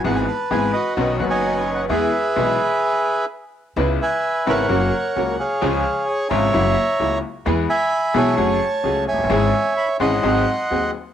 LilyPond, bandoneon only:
\new Staff \with { instrumentName = "Bandoneon" } { \time 4/4 \key e \major \tempo 4 = 129 << { fis''16 gis''16 a''8 gis''8 dis''4 fis''16 gis''16~ \tuplet 3/2 { gis''4 fis''8 } | e''2. r4 | \key cis \minor r8 gis''4 fis''2 eis''8~ | eis''4 gis''8 ais''2 r8 |
r8 b''4 a''2 gis''8~ | gis''4 b''8 bis''2 r8 | } \\ { b'4. fis'4~ fis'16 <cis'' dis''>4~ <cis'' dis''>16 | <gis' b'>2. r4 | r8 <b' e''>4 <ais' cis''>2 <gis' cis''>8~ | <gis' cis''>4. <cis'' e''>2 r8 |
r8 <e'' gis''>4 cis''2 <cis'' e''>8~ | <cis'' e''>4. <dis'' fis''>2 r8 | } >> }